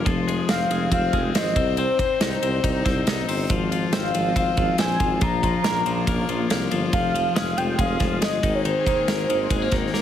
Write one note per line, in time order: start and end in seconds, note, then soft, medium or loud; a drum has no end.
0.00 0.10 A#3 medium
0.00 0.10 C#4 medium
0.00 1.53 F4 medium
0.06 0.41 F1 loud
0.06 1.60 F3 medium
0.06 1.55 G#3 medium
0.06 1.54 C4 medium
0.06 kick loud
0.06 ride medium
0.28 0.70 G#3 medium
0.28 ride medium
0.49 0.66 F1 loud
0.49 0.91 C4 medium
0.49 0.89 F5 loud
0.49 snare loud
0.49 ride medium
0.70 0.88 F1 loud
0.70 1.13 G#3 medium
0.70 ride medium
0.91 1.09 F1 loud
0.91 1.35 C4 medium
0.91 1.39 F5 loud
0.91 kick loud
0.91 ride medium
1.13 1.31 F1 loud
1.13 1.56 G#3 medium
1.13 kick loud
1.13 ride soft
1.34 1.57 G#1 medium
1.34 1.56 C4 medium
1.34 1.80 D#5 loud
1.34 snare loud
1.34 ride medium
1.55 1.87 C2 loud
1.55 3.47 G3 medium
1.55 5.18 C4 medium
1.55 1.78 C4 medium
1.55 3.47 D#4 medium
1.55 kick loud
1.55 ride medium
1.77 1.99 C4 medium
1.77 3.07 C5 medium
1.77 ride medium
1.99 2.42 C4 medium
1.99 kick medium
1.99 ride medium
2.20 2.38 C2 loud
2.20 2.64 D#4 medium
2.20 snare loud
2.20 ride medium
2.42 2.59 C2 loud
2.42 2.85 C4 medium
2.42 ride medium
2.64 2.81 C2 loud
2.64 3.07 D#4 medium
2.64 kick loud
2.64 ride medium
2.85 3.03 C2 loud
2.85 3.27 C4 medium
2.85 kick loud
2.85 snare soft
2.85 ride soft
3.06 3.30 C2 medium
3.06 3.54 D#4 medium
3.06 snare loud
3.06 ride medium
3.28 3.46 G1 medium
3.28 3.54 C4 medium
3.28 open hi-hat medium
3.28 ride medium
3.49 3.85 G#1 loud
3.49 5.20 D#3 medium
3.49 5.20 F3 medium
3.49 3.71 F3 medium
3.49 5.20 G#3 medium
3.49 5.20 F4 medium
3.49 kick loud
3.49 hi-hat pedal medium
3.49 ride medium
3.72 4.14 F3 medium
3.72 ride medium
3.92 4.10 G#1 loud
3.92 4.35 C4 medium
3.92 snare loud
3.92 ride medium
3.96 4.35 F5 medium
4.14 4.32 G#1 loud
4.14 4.57 F3 medium
4.14 ride medium
4.36 4.53 G#1 medium
4.36 4.77 C4 medium
4.36 4.77 F5 medium
4.36 kick loud
4.36 ride medium
4.57 4.75 G#1 loud
4.57 4.99 F3 medium
4.57 kick loud
4.57 ride medium
4.78 4.96 A#1 medium
4.78 5.26 C4 medium
4.78 5.19 G#5 loud
4.78 snare loud
4.78 ride medium
5.00 5.23 G#1 medium
5.00 5.21 F3 medium
5.00 kick loud
5.00 ride medium
5.21 5.57 A#1 loud
5.21 5.43 F3 medium
5.21 6.91 A#3 medium
5.21 6.91 C#4 medium
5.21 8.40 F4 medium
5.21 6.47 A#5 loud
5.21 kick loud
5.21 ride medium
5.43 5.86 F3 medium
5.43 kick medium
5.43 ride medium
5.64 5.82 A#1 medium
5.64 6.07 A#3 medium
5.64 snare loud
5.64 ride medium
5.85 6.03 A#1 medium
5.85 6.29 F3 medium
5.85 ride medium
6.07 6.25 A#1 loud
6.07 6.50 A#3 medium
6.07 kick loud
6.07 ride medium
6.28 6.46 A#1 medium
6.28 6.70 F3 medium
6.28 ride soft
6.50 6.67 C2 loud
6.50 6.98 A#3 medium
6.50 snare loud
6.50 ride medium
6.71 6.89 G1 medium
6.71 6.92 F3 medium
6.71 ride medium
6.93 7.28 F1 medium
6.93 7.13 F3 medium
6.93 10.02 G#3 medium
6.93 10.02 C4 medium
6.93 7.33 F5 loud
6.93 kick loud
6.93 ride medium
7.15 7.56 F3 medium
7.15 ride medium
7.35 7.53 F1 loud
7.35 7.78 G#3 medium
7.35 7.59 F5 loud
7.35 snare loud
7.35 ride medium
7.57 7.75 F1 loud
7.57 7.99 F3 medium
7.57 7.82 G5 loud
7.57 ride medium
7.78 7.96 F1 loud
7.78 8.21 G#3 medium
7.78 8.11 F5 loud
7.78 kick loud
7.78 ride medium
8.00 8.23 F1 loud
8.00 8.43 F3 medium
8.00 kick loud
8.00 snare soft
8.00 ride soft
8.12 8.17 F5 loud
8.22 8.39 G1 loud
8.22 9.08 G#3 medium
8.22 8.52 D#5 loud
8.22 snare loud
8.22 ride medium
8.43 8.74 G#1 loud
8.43 8.65 D#3 medium
8.43 10.02 D#3 medium
8.43 10.02 A#3 medium
8.43 10.02 G#4 medium
8.43 kick loud
8.43 ride medium
8.55 8.60 C#5 medium
8.65 8.86 D#3 medium
8.65 9.90 C5 medium
8.65 ride medium
8.86 9.29 D#3 medium
8.86 kick medium
8.86 ride medium
9.07 9.25 G#1 loud
9.07 9.51 A#3 medium
9.07 snare loud
9.07 ride medium
9.29 9.47 G#1 loud
9.29 9.72 D#3 medium
9.29 ride medium
9.50 9.68 G#1 loud
9.50 9.62 G#3 medium
9.50 kick loud
9.50 ride medium
9.62 9.93 A#3 medium
9.71 9.90 G#1 loud
9.71 10.02 D#3 medium
9.71 kick loud
9.71 snare soft
9.71 ride soft
9.94 10.02 G#1 medium
9.94 10.02 A#3 medium
9.94 10.02 A#4 medium
9.94 snare medium